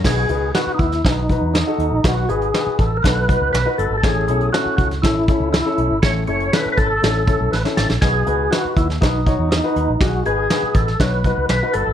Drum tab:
CC |x---------------|----------------|----------------|----------------|
HH |--x-x-xxx-x-x-x-|x-xxx-x-x-x-x-x-|x-xxx-xxx-x-x-x-|x-xxx-x-x-x-----|
SD |o---o--oo---o---|o---o---o---o---|o---o--oo---o---|o---o---o---oooo|
BD |o-----o-o-o-----|o-----o-o-o-----|o-----o-o-o-----|o-----o---o-----|

CC |----------------|----------------|
HH |x-x-x-x-x-x-x-x-|x-x-x-x-x-x-x-x-|
SD |o---o--oo---o---|o---o--oo---o---|
BD |o-----o-o-o-----|o-----o-o-o-----|